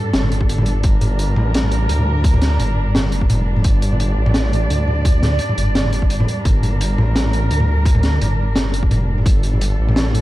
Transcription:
0.00 0.12 G2 medium
0.00 10.21 G3 medium
0.00 10.21 D4 medium
0.00 0.83 A4 medium
0.13 0.83 G1 loud
0.13 snare loud
0.13 closed hi-hat medium
0.23 mid tom medium
0.32 closed hi-hat medium
0.41 kick medium
0.49 closed hi-hat medium
0.58 mid tom medium
0.66 closed hi-hat medium
0.83 1.35 G1 medium
0.83 3.64 A#4 medium
0.83 kick loud
0.83 closed hi-hat medium
1.01 closed hi-hat medium
1.01 mid tom soft
1.19 closed hi-hat medium
1.36 1.88 A1 medium
1.36 mid tom medium
1.54 snare loud
1.54 closed hi-hat medium
1.63 mid tom soft
1.72 closed hi-hat medium
1.89 2.58 D2 loud
1.89 closed hi-hat medium
1.98 mid tom medium
2.24 kick loud
2.24 closed hi-hat medium
2.34 mid tom medium
2.42 snare medium
2.42 closed hi-hat medium
2.59 3.08 G1 medium
2.59 closed hi-hat medium
2.59 mid tom soft
2.95 snare loud
2.95 closed hi-hat medium
2.95 mid tom medium
3.08 3.28 F#1 medium
3.08 closed hi-hat medium
3.21 kick medium
3.30 3.63 F1 loud
3.30 closed hi-hat medium
3.30 mid tom medium
3.56 mid tom medium
3.64 4.16 G1 loud
3.64 6.45 D5 medium
3.64 kick loud
3.64 closed hi-hat medium
3.82 closed hi-hat medium
3.92 mid tom medium
4.00 closed hi-hat medium
4.17 4.69 A1 loud
4.26 mid tom medium
4.34 snare loud
4.34 closed hi-hat medium
4.53 closed hi-hat soft
4.53 mid tom medium
4.70 5.39 D2 loud
4.70 closed hi-hat medium
4.88 mid tom medium
5.05 kick loud
5.05 closed hi-hat loud
5.23 snare medium
5.23 closed hi-hat medium
5.23 mid tom medium
5.39 closed hi-hat medium
5.49 mid tom medium
5.58 6.26 G1 loud
5.58 closed hi-hat medium
5.75 snare loud
5.75 closed hi-hat medium
5.86 mid tom medium
5.93 closed hi-hat medium
6.02 kick medium
6.10 closed hi-hat medium
6.20 mid tom medium
6.28 closed hi-hat medium
6.45 6.97 G1 loud
6.45 9.25 A#4 medium
6.45 kick loud
6.45 closed hi-hat medium
6.63 closed hi-hat medium
6.63 mid tom medium
6.81 closed hi-hat medium
6.98 7.49 A1 loud
6.98 mid tom medium
7.16 snare loud
7.16 closed hi-hat medium
7.26 mid tom soft
7.33 closed hi-hat medium
7.51 8.20 D2 loud
7.51 closed hi-hat medium
7.60 mid tom medium
7.85 kick loud
7.85 closed hi-hat loud
7.95 mid tom medium
8.03 snare medium
8.03 closed hi-hat medium
8.21 8.70 G1 loud
8.21 closed hi-hat medium
8.21 mid tom medium
8.55 snare loud
8.55 closed hi-hat medium
8.55 mid tom soft
8.70 8.90 F#1 loud
8.70 closed hi-hat medium
8.83 kick medium
8.91 9.25 F1 loud
8.91 closed hi-hat medium
8.91 mid tom medium
9.18 mid tom medium
9.25 9.77 G1 medium
9.25 10.21 A4 medium
9.25 kick loud
9.25 closed hi-hat medium
9.43 closed hi-hat medium
9.53 mid tom soft
9.61 closed hi-hat medium
9.79 10.21 A1 loud
9.89 mid tom medium
9.96 snare loud
9.96 closed hi-hat medium
10.14 closed hi-hat medium
10.14 mid tom medium

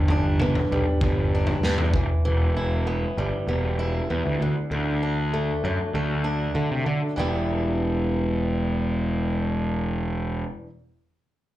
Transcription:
0.00 0.58 G1 medium
0.00 1.33 G2 medium
0.00 0.72 G3 medium
0.08 1.33 D4 medium
0.08 floor tom medium
0.40 1.02 B3 medium
0.40 mid tom medium
0.55 floor tom medium
0.72 0.84 B1 medium
0.72 1.95 G3 medium
1.01 1.54 G1 medium
1.01 1.64 B3 medium
1.01 kick medium
1.01 floor tom medium
1.35 1.95 D4 medium
1.47 floor tom medium
1.63 1.77 G2 medium
1.63 1.95 B3 medium
1.63 snare medium
1.78 1.92 E2 medium
1.78 floor tom medium
1.93 2.06 E1 medium
1.93 2.24 E3 medium
1.93 kick medium
2.25 3.04 E1 medium
2.25 3.79 E3 medium
2.57 3.78 E4 medium
2.87 3.47 B3 medium
3.17 3.30 G1 medium
3.17 4.41 G3 medium
3.47 4.00 E1 medium
3.47 4.09 B3 medium
3.79 4.41 E4 medium
4.10 4.23 E2 medium
4.10 4.41 B3 medium
4.26 4.38 D2 medium
4.40 4.53 D2 medium
4.40 4.70 D3 medium
4.71 5.50 D2 medium
4.71 6.26 D3 medium
5.03 6.23 D4 medium
5.34 5.94 A3 medium
5.64 5.77 F#2 medium
5.64 7.17 F#3 medium
5.94 6.47 D2 medium
5.94 6.54 A3 medium
6.24 7.17 D4 medium
6.55 6.69 D3 medium
6.55 7.17 A3 medium
6.71 6.85 C3 medium
6.86 7.16 D3 medium
6.86 7.00 D3 medium
7.16 10.43 E1 medium
7.16 10.66 E3 medium
7.16 10.68 G3 medium
7.16 10.69 B3 medium
7.16 10.70 E4 medium

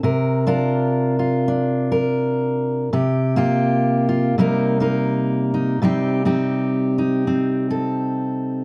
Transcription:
0.03 2.92 C3 medium
0.03 0.47 A#4 medium
0.47 1.47 D4 medium
0.47 1.18 F4 medium
0.47 1.90 A#4 medium
1.19 2.90 F4 medium
1.48 2.89 D4 medium
1.92 2.90 A#4 medium
2.93 4.37 C3 medium
2.93 3.36 G4 medium
3.36 4.38 A#3 medium
3.36 4.07 F4 medium
3.36 4.39 G4 medium
4.09 4.34 F4 medium
4.38 5.80 C3 medium
4.38 5.79 G3 medium
4.38 4.79 A#3 medium
4.38 4.80 D#4 medium
4.38 4.80 A#4 medium
4.80 5.82 A#3 medium
4.80 5.53 D#4 medium
4.80 5.79 A#4 medium
5.54 5.79 D#4 medium
5.82 8.64 C3 medium
5.82 8.64 G3 medium
5.82 6.25 C4 medium
5.82 6.25 D#4 medium
5.82 6.26 G4 medium
6.25 7.27 C4 medium
6.25 6.98 D#4 medium
6.25 7.70 G4 medium
6.98 8.64 D#4 medium
7.27 8.64 C4 medium
7.71 8.64 A4 medium

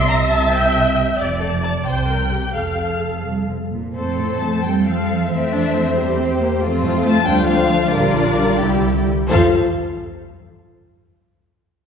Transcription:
0.00 1.18 C2 loud
0.00 1.18 C3 medium
0.00 1.16 E5 loud
0.00 0.10 C7 loud
0.09 0.17 A#5 loud
0.09 0.31 A#6 loud
0.30 0.52 A5 medium
0.30 0.54 A6 loud
0.52 1.18 G5 medium
0.52 1.19 G6 loud
1.18 1.83 F1 medium
1.18 1.82 F2 medium
1.18 1.87 D5 loud
1.41 1.49 A4 medium
1.41 1.62 A5 medium
1.63 1.71 A5 medium
1.63 1.72 A6 loud
1.86 2.55 C2 medium
1.86 2.55 C3 medium
1.86 2.10 C5 loud
1.86 2.55 G5 loud
1.86 2.56 G6 loud
2.11 2.33 A#4 medium
2.33 2.56 G4 medium
2.55 3.73 F1 medium
2.55 3.20 F2 medium
2.55 3.61 A4 medium
2.55 3.24 F5 medium
2.55 3.27 F6 loud
3.25 3.47 C2 medium
3.48 3.56 C3 medium
3.73 3.96 A#2 medium
3.97 5.27 F2 medium
3.97 4.61 A3 medium
3.97 4.64 C4 medium
3.97 4.63 A4 medium
3.97 4.61 C5 medium
4.19 4.40 A2 medium
4.19 4.40 A4 loud
4.41 4.65 A3 medium
4.41 4.64 A5 loud
4.64 4.87 G3 medium
4.64 5.30 C4 medium
4.64 5.31 A4 medium
4.64 4.87 G5 loud
4.87 5.31 F3 medium
4.87 5.30 F5 loud
5.30 5.95 F2 medium
5.30 6.40 E3 loud
5.30 5.95 A3 medium
5.30 5.52 C4 medium
5.30 7.23 C5 medium
5.30 6.39 E5 loud
5.53 5.75 D4 medium
5.75 6.16 C4 medium
5.96 6.61 E2 medium
5.96 6.18 G3 medium
5.96 6.61 G4 medium
6.18 6.39 C4 medium
6.40 6.62 A#3 medium
6.61 7.26 F2 loud
6.61 7.25 A3 medium
6.61 7.25 C4 loud
6.61 7.25 F4 medium
6.83 6.91 A2 loud
6.83 7.03 A4 loud
7.04 7.25 A3 loud
7.04 7.26 A5 loud
7.25 7.92 D2 loud
7.25 7.47 G3 loud
7.25 7.92 A3 medium
7.25 7.92 D4 loud
7.25 8.57 F4 medium
7.25 7.91 C5 medium
7.25 7.48 G5 loud
7.47 7.92 F3 loud
7.47 7.91 F5 loud
7.92 8.59 A#1 loud
7.92 9.05 D3 loud
7.92 8.15 G3 loud
7.92 8.59 D4 medium
7.92 8.61 A#4 medium
7.92 9.07 D5 loud
8.14 8.37 F3 medium
8.37 8.60 G3 medium
8.59 9.09 C2 loud
8.59 9.09 G3 medium
8.59 9.10 E4 medium
8.59 9.09 G4 medium
9.30 9.56 F2 loud
9.30 9.56 F3 medium
9.30 9.56 F3 loud
9.30 9.56 F4 medium
9.30 9.56 A4 medium
9.30 9.56 C5 medium
9.30 9.57 F5 loud

